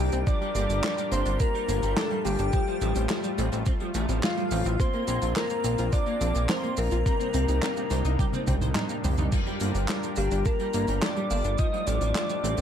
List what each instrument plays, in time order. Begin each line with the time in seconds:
Already playing: supersaw synth C3 G3 A#3 D4 D#4, soft synth lead G4, digital synth lead G5
0.00 analog synth bass C2
0.12 analog synth bass C2, synth arpeggio sound C4, clean electric guitar C4, closed hi-hat, shaker
0.26 synth arpeggio sound F3, clean electric guitar G3, supersaw synth F4 G4 A#4, soft synth lead D5, digital synth lead D6, kick, closed hi-hat, shaker
0.41 synth arpeggio sound G3, clean electric guitar G3, closed hi-hat
0.55 analog synth bass G1, clean electric guitar G3, synth arpeggio sound A#3, closed hi-hat, shaker
0.69 analog synth bass G1, clean electric guitar G3, synth arpeggio sound D4, closed hi-hat, shaker
0.83 synth arpeggio sound F3, clean electric guitar G3, snare, clap, closed hi-hat, shaker
0.98 synth arpeggio sound G3, clean electric guitar G3, closed hi-hat, shaker
1.12 analog synth bass G1, synth arpeggio sound A#3, clean electric guitar D4, soft synth lead C5, digital synth lead C6, closed hi-hat, shaker
1.25 analog synth bass G1, clean electric guitar G3, synth arpeggio sound D4, closed hi-hat, shaker
1.40 synth arpeggio sound F3, clean electric guitar D4, soft synth lead A#4, digital synth lead A#5, kick, closed hi-hat, shaker
1.54 clean electric guitar G3, synth arpeggio sound G3, closed hi-hat
1.68 analog synth bass G1, clean electric guitar A#3, synth arpeggio sound A#3, closed hi-hat, shaker
1.83 analog synth bass G1, clean electric guitar G3, synth arpeggio sound D4, closed hi-hat, shaker
1.97 synth arpeggio sound F3, clean electric guitar G4, soft synth lead A4, digital synth lead A5, snare, clap, closed hi-hat, shaker
2.11 clean electric guitar G3, synth arpeggio sound G3, closed hi-hat
2.25 analog synth bass G1, synth arpeggio sound A#3, clean electric guitar D4, soft synth lead G4, digital synth lead G5, open hi-hat, shaker
2.39 analog synth bass G1, clean electric guitar G3, synth arpeggio sound D4, closed hi-hat, shaker
2.53 clean electric guitar F3, synth arpeggio sound F3, supersaw synth A3, kick, closed hi-hat, shaker
2.68 clean electric guitar F3, synth arpeggio sound G3, closed hi-hat
2.81 analog synth bass A1, clean electric guitar F3, synth arpeggio sound A3, closed hi-hat, shaker
2.95 analog synth bass A1, clean electric guitar F3, synth arpeggio sound C4, closed hi-hat, shaker
3.09 clean electric guitar F3, synth arpeggio sound F3, snare, clap, closed hi-hat, shaker
3.24 clean electric guitar F3, synth arpeggio sound G3, closed hi-hat, shaker
3.38 analog synth bass A1, synth arpeggio sound A3, clean electric guitar C4, closed hi-hat, shaker
3.52 analog synth bass A1, clean electric guitar F3, synth arpeggio sound C4, closed hi-hat, shaker
3.66 synth arpeggio sound F3, clean electric guitar C4, kick, closed hi-hat, shaker
3.80 clean electric guitar F3, synth arpeggio sound G3, closed hi-hat
3.94 analog synth bass A1, clean electric guitar A3, synth arpeggio sound A3, closed hi-hat, shaker
4.09 analog synth bass A1, clean electric guitar F3, synth arpeggio sound C4, closed hi-hat, shaker
4.22 synth arpeggio sound F3, clean electric guitar F4, soft synth lead F4, digital synth lead F5, snare, clap, closed hi-hat, shaker
4.37 clean electric guitar F3, synth arpeggio sound G3, closed hi-hat
4.51 analog synth bass A1, synth arpeggio sound A3, clean electric guitar C4, open hi-hat, shaker
4.65 analog synth bass A1, clean electric guitar F3, synth arpeggio sound C4, closed hi-hat, shaker
4.79 synth arpeggio sound F3, supersaw synth A#3 C4, clean electric guitar A#3, soft synth lead C5, digital synth lead C6, kick, closed hi-hat, shaker
4.93 clean electric guitar A#3, synth arpeggio sound A#3, closed hi-hat
5.07 analog synth bass A#1, clean electric guitar A#3, synth arpeggio sound C4, closed hi-hat, shaker
5.22 analog synth bass A#1, clean electric guitar A#3, synth arpeggio sound F4, closed hi-hat, shaker
5.36 synth arpeggio sound F3, clean electric guitar A#3, soft synth lead A#4, digital synth lead A#5, snare, clap, closed hi-hat, shaker
5.50 clean electric guitar A#3, synth arpeggio sound A#3, closed hi-hat, shaker
5.64 analog synth bass A#1, synth arpeggio sound C4, clean electric guitar F4, closed hi-hat, shaker
5.78 analog synth bass A#1, clean electric guitar A#3, synth arpeggio sound F4, closed hi-hat, shaker
5.92 synth arpeggio sound F3, clean electric guitar F4, soft synth lead D5, digital synth lead D6, kick, closed hi-hat, shaker
6.06 clean electric guitar A#3, synth arpeggio sound A#3, closed hi-hat
6.21 analog synth bass A#1, synth arpeggio sound C4, clean electric guitar D4, closed hi-hat, shaker
6.35 analog synth bass A#1, clean electric guitar A#3, synth arpeggio sound F4, closed hi-hat, shaker
6.49 synth arpeggio sound F3, clean electric guitar A#4, soft synth lead C5, digital synth lead C6, snare, clap, closed hi-hat, shaker
6.63 clean electric guitar A#3, synth arpeggio sound A#3, closed hi-hat
6.77 analog synth bass A#1, synth arpeggio sound C4, clean electric guitar F4, soft synth lead A#4, digital synth lead A#5, open hi-hat, shaker
6.91 analog synth bass A#1, clean electric guitar A#3, synth arpeggio sound F4, closed hi-hat, shaker
7.06 supersaw synth C3 G3 A#3 D4 D#4, synth arpeggio sound G3, clean electric guitar C4, kick, closed hi-hat, shaker
7.20 synth arpeggio sound A#3, clean electric guitar C4, closed hi-hat, shaker
7.34 analog synth bass C2, clean electric guitar C4, synth arpeggio sound C4, closed hi-hat, shaker
7.48 analog synth bass C2, clean electric guitar C4, synth arpeggio sound D#4, closed hi-hat, shaker
7.62 synth arpeggio sound G3, clean electric guitar C4, snare, clap, closed hi-hat, shaker
7.76 synth arpeggio sound A#3, clean electric guitar C4, closed hi-hat, shaker
7.90 analog synth bass C2, synth arpeggio sound C4, clean electric guitar G4, snare, closed hi-hat, shaker
8.05 analog synth bass C2, clean electric guitar C4, synth arpeggio sound D#4, closed hi-hat, shaker
8.19 synth arpeggio sound G3, clean electric guitar G4, kick, closed hi-hat, high tom, shaker
8.33 synth arpeggio sound A#3, clean electric guitar C4, closed hi-hat, high tom, shaker
8.47 analog synth bass C2, synth arpeggio sound C4, clean electric guitar C4, kick, closed hi-hat, high tom, shaker
8.61 analog synth bass C2, synth arpeggio sound D#4, clean electric guitar C5, closed hi-hat, mid tom, shaker
8.75 synth arpeggio sound G3, clean electric guitar D#4, snare, clap, closed hi-hat, mid tom, shaker
8.89 synth arpeggio sound A#3, clean electric guitar D#4, closed hi-hat, shaker
9.04 analog synth bass C2, synth arpeggio sound C4, clean electric guitar G4, mid tom, open hi-hat, shaker
9.18 analog synth bass C2, clean electric guitar D#4, synth arpeggio sound D#4, closed hi-hat, mid tom, shaker
9.32 synth arpeggio sound F3, clean electric guitar G3, supersaw synth F4 G4 A#4, kick, closed hi-hat, crash, shaker
9.46 clean electric guitar G3, synth arpeggio sound G3, closed hi-hat
9.60 analog synth bass G1, clean electric guitar G3, synth arpeggio sound A#3, closed hi-hat, shaker
9.75 analog synth bass G1, clean electric guitar G3, synth arpeggio sound D4, closed hi-hat, shaker
9.88 synth arpeggio sound F3, clean electric guitar G3, snare, clap, closed hi-hat, shaker
10.03 clean electric guitar G3, synth arpeggio sound G3, closed hi-hat, shaker
10.16 analog synth bass G1, synth arpeggio sound A#3, clean electric guitar D4, soft synth lead G4, digital synth lead G5, closed hi-hat, shaker
10.31 analog synth bass G1, clean electric guitar G3, synth arpeggio sound D4, closed hi-hat, shaker
10.45 synth arpeggio sound F3, clean electric guitar D4, soft synth lead A#4, digital synth lead A#5, kick, closed hi-hat, shaker
10.59 clean electric guitar G3, synth arpeggio sound G3, closed hi-hat
10.73 analog synth bass G1, clean electric guitar A#3, synth arpeggio sound A#3, closed hi-hat, shaker
10.87 analog synth bass G1, clean electric guitar G3, synth arpeggio sound D4, closed hi-hat, shaker
11.02 synth arpeggio sound F3, clean electric guitar G4, soft synth lead D5, digital synth lead D6, snare, clap, closed hi-hat, shaker
11.16 clean electric guitar G3, synth arpeggio sound G3, closed hi-hat
11.30 analog synth bass G1, synth arpeggio sound A#3, clean electric guitar D4, open hi-hat, shaker
11.44 analog synth bass G1, clean electric guitar G3, synth arpeggio sound D4, closed hi-hat, shaker
11.58 clean electric guitar F3, synth arpeggio sound F3, supersaw synth A3, soft synth lead D#5, digital synth lead D#6, kick, closed hi-hat, shaker
11.73 clean electric guitar F3, synth arpeggio sound G3, closed hi-hat
11.86 analog synth bass A1, clean electric guitar F3, synth arpeggio sound A3, soft synth lead D5, digital synth lead D6, closed hi-hat, shaker
12.01 analog synth bass A1, clean electric guitar F3, synth arpeggio sound C4, closed hi-hat, shaker
12.15 clean electric guitar F3, synth arpeggio sound F3, snare, clap, closed hi-hat, shaker
12.29 clean electric guitar F3, synth arpeggio sound G3, closed hi-hat, shaker
12.44 analog synth bass A1, synth arpeggio sound A3, clean electric guitar C4, closed hi-hat, shaker
12.57 clean electric guitar F3, closed hi-hat, shaker